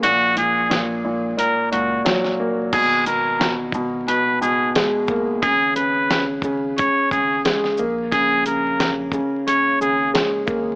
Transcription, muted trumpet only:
X:1
M:4/4
L:1/16
Q:"Swing 16ths" 1/4=89
K:G#m
V:1 name="Muted trumpet"
F2 G3 z3 A2 F2 z4 | G2 A3 z3 B2 G2 z4 | G2 B3 z3 c2 G2 z4 | G2 A3 z3 c2 G2 z4 |]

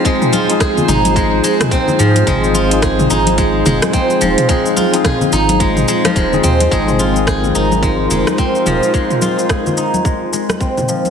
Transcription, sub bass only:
X:1
M:4/4
L:1/8
Q:"Swing 16ths" 1/4=108
K:Ab
V:1 name="Sub bass" clef=bass
z3 A,,,2 z2 A,, | A,,,3 A,,,2 F,,, z E,,, | z3 A,,,2 z E,,, E,, | A,,,3 A,,,2 F,,, z E,,, |
z8 |]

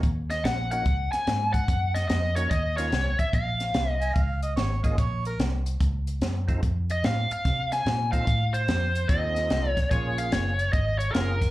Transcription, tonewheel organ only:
X:1
M:4/4
L:1/8
Q:"Swing" 1/4=146
K:Bbm
V:1 name="Tonewheel organ"
z3 [B,DEG] z4 | z3 [B,DEG] z [B,DEF] z2 | z6 z [B,DFA] | z6 z [CEF=A] |
z6 z [CEF=A] | z4 [CEF=A]2 [CEFA] z | [B,DFA]3 z3 [B,DFA] z |]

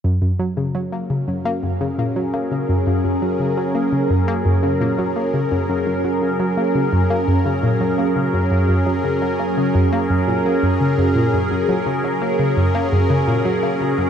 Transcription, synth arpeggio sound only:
X:1
M:4/4
L:1/16
Q:1/4=85
K:Gb
V:1 name="Synth arpeggio sound" clef=bass
G,, G,, G, D, G, B, D, G,, B, G,, D, B,, G, B, D, G,, | G,, G,, G, D, G, B, D, G,, B, G,, D, B,, G, B, D, G,, | G,, G,, G, D, G, B, D, G,, B, G,, D, B,, G, B, D, G,, | G,, G,, G, D, G, B, D, G,, B, G,, B,, G, G,, D, G,, B,, |
G,, G,, G, D, G, B, D, G,, B, G,, D, B,, G, B, D, G,, |]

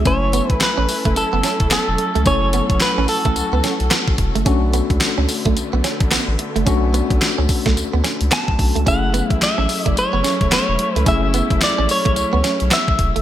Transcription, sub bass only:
X:1
M:4/4
L:1/16
Q:"Swing 16ths" 1/4=109
K:F#m
V:1 name="Sub bass" clef=bass
F,,,3 A,,, z A,,, z F,,, F,,, F,,, z E,,, E,,, E,,, z C,, | F,,,3 F,,, z A,,, z A,,, C,, C,, z B,,, z A,,, E,,, F,,, | B,,,3 C,, z C,, z B,,, B,,, B,,, z A,,, A,,, A,,, z F,,, | B,,,3 B,,, z C,, z B,,, D,, D,, z C,, z B,,, B,,, C,, |
F,,,3 A,,, z A,,, z F,,, F,,, F,,, z E,,, E,,, E,,, z C,, | F,,,3 F,,, z A,,, z A,,, C,, C,, z B,,, z A,,, E,,, F,,, |]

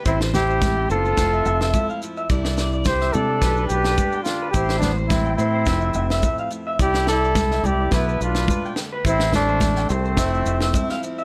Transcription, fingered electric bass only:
X:1
M:4/4
L:1/8
Q:"Swing 16ths" 1/4=107
K:C
V:1 name="Fingered electric bass" clef=bass
A,,,3 ^F,,, =F,,, F,,, z2 | C,,3 C, B,,, B,,, z2 | A,,,3 A,, F,,, F,,, z2 | C,,3 C,, B,,, B,,, z2 |
A,,,3 C,, F,,, F,,, z2 |]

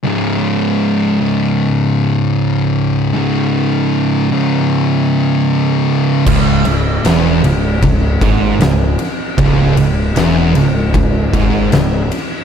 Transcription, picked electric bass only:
X:1
M:4/4
L:1/8
Q:1/4=77
K:C#m
V:1 name="Picked electric bass" clef=bass
z8 | z8 | C,,, C,,, E,,, C,,, C,,, G,,, C,,, z | C,,, C,,, E,,, C,,, C,,, G,,, C,,, z |]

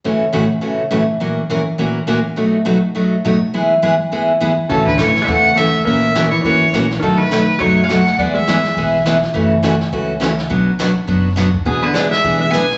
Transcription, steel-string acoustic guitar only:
X:1
M:4/4
L:1/8
Q:"Swing" 1/4=207
K:A
V:1 name="Steel-string acoustic guitar"
[A,,C,E,A,CF] z [A,,C,E,A,CF] z [A,,C,E,A,CF] z [A,,C,E,A,CF] z | [^A,,E,^A,CF^A] z [A,,E,A,CFA] z [A,,E,A,CFA] z [A,,E,A,CFA] z | [B,,F,A,^DF] z [B,,F,A,DF] z [B,,F,A,DF] z [B,,F,A,DF] z | [E,G,B,EG] z [E,G,B,EG] z [E,G,B,EG] z [E,G,B,EG] z |
[C,E,A,CF] z [C,E,A,CF] z [C,E,A,CF] z [C,E,A,CF] z | [E,^A,CF^A] z [E,A,CFA] z [E,A,CFA] z [E,A,CFA] z | [B,,F,A,^DF] z [B,,F,A,DF] z [B,,F,A,DF] z [B,,F,A,DF] z | [E,G,B,EG] z [E,G,B,EG] z [E,G,B,EG] z [E,G,B,EG] z |
[C,E,A,CF] z [C,E,A,CF] z [C,E,A,CF] z [C,E,A,CF] z | [B,,F,B,DF] z [B,,F,B,DF] z [B,,F,B,DF] z [B,,F,B,DF] z | [E,B,DG] z [E,B,DG] z [E,B,DG] z [E,B,DG] z |]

